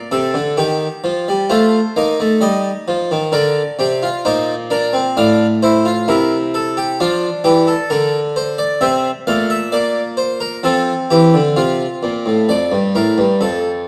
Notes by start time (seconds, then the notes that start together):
Already playing: D5
0.11 C3 A4
0.34 D3
0.57 D#3 G4
1.04 F3
1.28 G3
1.50 A3 F4 C5
1.96 A#3 D#4
2.20 A3
2.41 G3 D#5
2.88 F3
3.11 D#3
3.32 D3 A#4 D5
3.79 C3 G4
4.03 F4
4.25 A#2 D#4 C5
4.70 D4 A#4
4.93 C4
5.17 A2 D4 F5
5.63 E4 C5
5.85 F4
6.08 C3 E4 A#4
6.54 A4
6.77 G4
7.00 F3 D4 F4
7.44 E3 G4
7.67 A4
7.90 D3 A#4
8.36 C5
8.58 D5
8.81 C3 C4 E5
9.27 A#2 A3 F5
9.50 E5
9.72 A#3 D5
10.17 C5
10.40 A#4
10.63 F3 C4 A4
11.10 E3 G4
11.34 D3
11.56 C3 F4
12.03 A#2
12.26 A2
12.49 F2 D5
12.72 G2
12.95 A2 A#4
13.18 G2
13.41 F2 A4